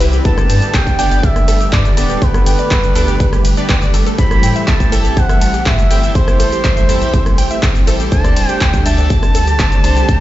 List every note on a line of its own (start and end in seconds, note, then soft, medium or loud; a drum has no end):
0.00 0.20 C2 loud
0.00 0.21 E3 medium
0.00 4.14 G3 medium
0.00 0.21 C4 medium
0.00 0.22 C4 medium
0.00 0.22 E4 medium
0.00 0.22 G4 medium
0.00 4.14 B4 medium
0.00 0.22 B4 medium
0.00 0.04 B4 loud
0.00 0.23 F#5 medium
0.00 open hi-hat loud
0.00 ride medium
0.00 cabasa medium
0.13 0.17 G4 medium
0.13 closed hi-hat soft
0.13 cabasa soft
0.25 0.45 G1 loud
0.25 4.15 D3 medium
0.25 10.20 A3 medium
0.25 0.96 B3 medium
0.25 0.96 D4 medium
0.25 0.96 G4 medium
0.25 10.05 G4 medium
0.25 0.96 A4 medium
0.25 0.34 B4 medium
0.25 0.76 A5 loud
0.25 kick loud
0.25 closed hi-hat medium
0.25 cabasa soft
0.38 0.44 G4 medium
0.38 cross-stick medium
0.38 closed hi-hat soft
0.38 cabasa soft
0.50 0.60 G2 loud
0.50 0.56 A5 medium
0.50 open hi-hat loud
0.50 ride medium
0.50 cabasa medium
0.62 0.68 G4 medium
0.62 closed hi-hat soft
0.62 cabasa soft
0.74 0.94 G1 medium
0.74 0.80 G4 medium
0.74 1.25 G5 loud
0.74 kick loud
0.74 clap loud
0.74 closed hi-hat medium
0.74 cabasa soft
0.87 kick medium
0.87 closed hi-hat soft
0.87 cabasa soft
0.99 1.09 G1 loud
0.99 1.22 B3 loud
0.99 1.22 D4 medium
0.99 1.22 G4 medium
0.99 1.22 D5 loud
0.99 1.03 G5 loud
0.99 open hi-hat loud
0.99 ride medium
0.99 cabasa medium
1.11 1.21 G1 medium
1.11 1.15 D5 medium
1.11 closed hi-hat soft
1.11 cabasa soft
1.23 1.34 G1 medium
1.23 1.72 E5 loud
1.23 kick loud
1.23 closed hi-hat medium
1.23 cabasa soft
1.36 cross-stick medium
1.36 closed hi-hat soft
1.36 cabasa soft
1.48 1.68 G1 medium
1.48 1.52 A4 loud
1.48 open hi-hat loud
1.48 ride medium
1.48 cabasa medium
1.61 1.64 G4 medium
1.61 closed hi-hat soft
1.61 cabasa soft
1.73 1.83 G2 loud
1.73 1.82 B4 medium
1.73 2.23 D5 loud
1.73 kick loud
1.73 clap loud
1.73 closed hi-hat medium
1.73 cabasa soft
1.85 1.91 G4 medium
1.85 closed hi-hat soft
1.85 cabasa soft
1.97 2.17 D1 medium
1.97 2.19 B3 medium
1.97 2.19 D4 medium
1.97 2.19 G4 medium
1.97 2.19 A4 loud
1.97 2.03 A5 medium
1.97 open hi-hat loud
1.97 ride medium
1.97 cabasa medium
2.10 2.16 G4 medium
2.10 closed hi-hat soft
2.10 cabasa soft
2.22 2.32 G1 loud
2.22 2.93 B3 medium
2.22 2.93 D4 medium
2.22 2.93 G4 medium
2.22 2.28 G4 medium
2.22 2.93 A4 medium
2.22 2.46 B4 loud
2.22 kick loud
2.22 closed hi-hat medium
2.22 cabasa soft
2.34 cross-stick medium
2.34 closed hi-hat soft
2.34 cabasa soft
2.46 2.56 G1 loud
2.46 3.90 B4 loud
2.46 2.50 G5 loud
2.46 open hi-hat loud
2.46 ride medium
2.46 cabasa medium
2.59 2.62 D5 medium
2.59 closed hi-hat soft
2.59 cabasa soft
2.71 2.91 G1 medium
2.71 kick loud
2.71 clap loud
2.71 closed hi-hat medium
2.71 cabasa soft
2.84 closed hi-hat soft
2.84 cabasa soft
2.95 3.06 D2 medium
2.95 3.18 B3 loud
2.95 3.18 D4 medium
2.95 3.18 G4 medium
2.95 2.99 A4 loud
2.95 3.18 D5 loud
2.95 open hi-hat loud
2.95 ride medium
2.95 cabasa medium
3.08 3.18 G1 medium
3.08 3.12 G4 medium
3.08 closed hi-hat soft
3.08 cabasa soft
3.20 3.40 G1 medium
3.20 3.29 B4 medium
3.20 kick loud
3.20 closed hi-hat medium
3.20 cabasa soft
3.33 3.39 G4 medium
3.33 cross-stick medium
3.33 closed hi-hat soft
3.33 cabasa soft
3.45 3.55 G1 loud
3.45 3.48 B4 medium
3.45 open hi-hat loud
3.45 ride medium
3.45 cabasa medium
3.57 3.71 B3 medium
3.57 3.71 D4 medium
3.57 3.71 G4 medium
3.57 3.71 B4 loud
3.57 3.61 D5 loud
3.57 closed hi-hat soft
3.57 cabasa soft
3.69 3.89 G1 medium
3.69 3.76 G5 medium
3.69 kick loud
3.69 clap loud
3.69 closed hi-hat medium
3.69 cabasa soft
3.82 3.85 D5 loud
3.82 closed hi-hat soft
3.82 cabasa soft
3.94 4.04 G1 loud
3.94 4.03 A4 medium
3.94 open hi-hat loud
3.94 ride medium
3.94 cabasa medium
4.06 4.12 A4 medium
4.06 closed hi-hat soft
4.06 cabasa soft
4.18 4.38 A1 loud
4.18 8.08 E3 medium
4.18 10.20 G3 medium
4.18 10.20 C4 medium
4.18 4.89 E4 medium
4.18 4.25 G4 medium
4.18 4.89 G4 medium
4.18 4.89 A4 medium
4.18 4.89 C5 medium
4.18 4.64 B5 loud
4.18 kick loud
4.18 closed hi-hat medium
4.18 cabasa soft
4.31 cross-stick medium
4.31 closed hi-hat soft
4.31 cabasa soft
4.43 4.53 A2 loud
4.43 4.47 G5 loud
4.43 open hi-hat loud
4.43 ride medium
4.43 cabasa medium
4.56 4.59 E5 medium
4.56 closed hi-hat soft
4.56 cabasa soft
4.68 4.88 A1 medium
4.68 5.18 A5 loud
4.68 kick loud
4.68 clap loud
4.68 closed hi-hat medium
4.68 cabasa soft
4.80 kick medium
4.80 closed hi-hat soft
4.80 cabasa soft
4.92 5.02 A1 loud
4.92 5.15 E4 loud
4.92 5.15 G4 medium
4.92 4.96 A4 loud
4.92 5.15 A4 medium
4.92 5.15 E5 loud
4.92 open hi-hat medium
4.92 ride medium
4.92 cabasa medium
5.05 5.14 A1 medium
5.05 5.08 G4 medium
5.05 closed hi-hat soft
5.05 cabasa soft
5.17 5.27 A1 loud
5.17 5.26 C5 medium
5.17 5.68 F#5 loud
5.17 kick loud
5.17 closed hi-hat medium
5.17 cabasa soft
5.29 5.35 E5 medium
5.29 cross-stick medium
5.29 closed hi-hat soft
5.29 cabasa soft
5.41 5.61 A1 medium
5.41 5.48 A5 medium
5.41 open hi-hat loud
5.41 ride medium
5.41 cabasa medium
5.54 5.60 G4 medium
5.54 closed hi-hat soft
5.54 cabasa soft
5.66 5.76 A2 loud
5.66 5.72 G4 medium
5.66 6.15 E5 loud
5.66 kick loud
5.66 clap loud
5.66 closed hi-hat medium
5.66 cabasa soft
5.79 closed hi-hat soft
5.79 cabasa soft
5.91 6.11 G1 medium
5.91 6.12 E4 medium
5.91 6.12 G4 medium
5.91 6.12 A4 medium
5.91 6.12 C5 medium
5.91 5.94 G5 loud
5.91 open hi-hat loud
5.91 ride medium
5.91 cabasa medium
6.03 6.07 E5 medium
6.03 closed hi-hat soft
6.03 cabasa soft
6.15 6.25 A1 loud
6.15 6.86 E4 medium
6.15 6.86 G4 medium
6.15 6.86 A4 medium
6.15 6.86 C5 medium
6.15 6.38 C5 loud
6.15 kick loud
6.15 closed hi-hat medium
6.15 cabasa soft
6.28 cross-stick medium
6.28 closed hi-hat soft
6.28 cabasa soft
6.40 6.50 A1 loud
6.40 6.44 A4 loud
6.40 7.83 C5 loud
6.40 open hi-hat loud
6.40 ride medium
6.40 cabasa medium
6.52 6.56 G4 medium
6.52 closed hi-hat soft
6.52 cabasa soft
6.64 6.84 A1 medium
6.64 6.74 C5 medium
6.64 kick loud
6.64 clap loud
6.64 closed hi-hat medium
6.64 cabasa medium
6.77 6.83 E5 medium
6.77 closed hi-hat soft
6.77 cabasa soft
6.89 6.99 E2 medium
6.89 7.12 E4 loud
6.89 7.12 G4 medium
6.89 7.12 A4 medium
6.89 7.12 E5 loud
6.89 6.95 A5 medium
6.89 open hi-hat loud
6.89 ride medium
6.89 cabasa medium
7.02 7.11 A1 medium
7.02 7.08 G4 medium
7.02 closed hi-hat soft
7.02 cabasa soft
7.14 7.33 A1 medium
7.14 7.20 G4 medium
7.14 kick loud
7.14 closed hi-hat medium
7.14 cabasa soft
7.26 cross-stick medium
7.26 closed hi-hat soft
7.26 cabasa soft
7.38 7.48 A1 loud
7.38 7.42 G5 loud
7.38 open hi-hat loud
7.38 ride medium
7.38 cabasa medium
7.51 7.54 E5 medium
7.51 closed hi-hat soft
7.51 cabasa soft
7.63 7.73 A1 medium
7.63 kick loud
7.63 clap loud
7.63 closed hi-hat medium
7.63 cabasa medium
7.75 closed hi-hat soft
7.75 cabasa soft
7.87 8.07 A1 loud
7.87 8.09 E4 medium
7.87 8.09 G4 medium
7.87 8.09 A4 medium
7.87 7.91 A4 loud
7.87 8.09 C5 medium
7.87 open hi-hat medium
7.87 ride medium
7.87 cabasa medium
8.00 8.04 G4 medium
8.00 closed hi-hat soft
8.00 cabasa soft
8.12 8.32 D2 loud
8.12 10.20 D3 medium
8.12 8.83 D4 medium
8.12 8.83 G4 medium
8.12 8.83 A4 medium
8.12 8.83 C5 medium
8.12 8.21 C5 medium
8.12 8.49 A5 loud
8.12 kick loud
8.12 closed hi-hat medium
8.12 cabasa soft
8.24 8.30 D5 medium
8.24 cross-stick medium
8.24 closed hi-hat soft
8.24 cabasa soft
8.36 8.47 D1 loud
8.36 8.43 A5 medium
8.36 open hi-hat loud
8.36 ride medium
8.36 cabasa medium
8.49 8.55 G4 medium
8.49 8.61 G5 loud
8.49 closed hi-hat soft
8.49 cabasa soft
8.61 8.81 D2 medium
8.61 8.67 G4 medium
8.61 8.85 G5 loud
8.61 kick loud
8.61 clap loud
8.61 closed hi-hat medium
8.61 cabasa soft
8.74 kick medium
8.74 closed hi-hat soft
8.74 cabasa soft
8.86 8.96 D2 loud
8.86 9.09 D4 loud
8.86 9.09 G4 medium
8.86 9.09 A4 medium
8.86 9.09 E5 loud
8.86 8.89 G5 loud
8.86 10.20 A5 loud
8.86 open hi-hat medium
8.86 ride medium
8.86 cabasa medium
8.98 9.08 D2 medium
8.98 9.02 D5 medium
8.98 closed hi-hat soft
8.98 cabasa soft
9.10 9.20 D2 loud
9.10 kick loud
9.10 closed hi-hat medium
9.10 cabasa soft
9.23 cross-stick medium
9.23 closed hi-hat soft
9.23 cabasa soft
9.35 9.55 D2 medium
9.35 9.39 A4 loud
9.35 open hi-hat loud
9.35 ride medium
9.35 cabasa medium
9.47 9.51 G4 medium
9.47 closed hi-hat soft
9.47 cabasa soft
9.59 9.70 D1 loud
9.59 9.69 C5 medium
9.59 kick loud
9.59 clap loud
9.59 closed hi-hat medium
9.59 cabasa medium
9.72 9.78 D5 medium
9.72 closed hi-hat soft
9.72 cabasa soft
9.84 10.04 C2 medium
9.84 10.06 D4 medium
9.84 10.06 G4 medium
9.84 10.06 A4 medium
9.84 10.06 C5 medium
9.84 9.90 A5 medium
9.84 open hi-hat medium
9.84 ride medium
9.84 cabasa medium
9.97 10.03 G4 medium
9.97 closed hi-hat soft
9.97 cabasa soft
10.09 10.19 D2 loud
10.09 10.20 D4 medium
10.09 10.20 G4 medium
10.09 10.15 G4 medium
10.09 10.20 A4 medium
10.09 10.20 C5 medium
10.09 10.20 F#5 medium
10.09 kick loud
10.09 closed hi-hat medium
10.09 cabasa soft